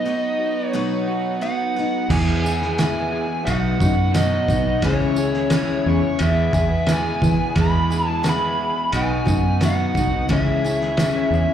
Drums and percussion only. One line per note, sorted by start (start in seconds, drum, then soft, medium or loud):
2.10 kick loud
2.10 crash loud
2.10 tambourine soft
2.46 tambourine medium
2.62 snare soft
2.79 snare loud
2.79 ride bell medium
2.79 tambourine loud
3.47 ride bell medium
3.47 tambourine medium
3.80 kick medium
3.80 tambourine medium
4.14 snare loud
4.14 ride bell medium
4.14 tambourine loud
4.48 kick medium
4.48 tambourine medium
4.82 kick loud
4.82 ride bell medium
4.82 tambourine soft
5.16 tambourine medium
5.34 snare soft
5.50 snare loud
5.50 ride bell medium
5.50 tambourine loud
6.19 ride bell medium
6.19 tambourine medium
6.53 kick loud
6.53 tambourine medium
6.87 snare loud
6.87 ride bell medium
6.87 tambourine medium
7.22 kick loud
7.22 tambourine medium
7.56 kick loud
7.56 ride bell medium
7.56 tambourine soft
7.92 tambourine medium
8.24 snare loud
8.24 ride bell medium
8.24 tambourine loud
8.92 ride bell medium
8.92 tambourine medium
9.27 kick medium
9.27 tambourine medium
9.61 snare loud
9.61 ride bell medium
9.61 tambourine loud
9.95 kick medium
9.95 tambourine medium
10.29 kick loud
10.29 ride bell medium
10.29 tambourine soft
10.66 tambourine medium
10.81 snare soft
10.97 snare loud
10.97 ride bell medium
10.97 tambourine medium
11.34 tambourine soft